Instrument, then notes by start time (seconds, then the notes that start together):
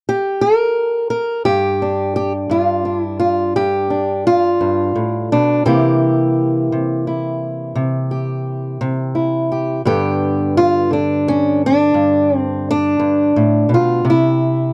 steel-string acoustic guitar
0.09 G4
0.41 A#4
1.10 A#4
1.45 G2 G4
1.82 D4
2.16 G4
2.50 G2 F4
2.85 D4
3.00 E4
3.20 F4
3.56 G2 G4
3.90 D4
4.27 F4
4.61 G2
4.95 A2
5.32 B2 D4
5.65 C3 E3 A#3 E4 G4
6.72 C3
7.07 E4
7.75 C3
8.11 G4
8.81 C3
9.15 E4
9.52 G4
9.85 G2 D3 B3 G4
10.57 F4
10.91 D3 D4
11.28 C#4
11.66 D4
11.94 G2
12.37 C4
12.71 D4
12.99 G2
13.36 A2
13.69 B2
13.74 F4
14.05 C3
14.10 E4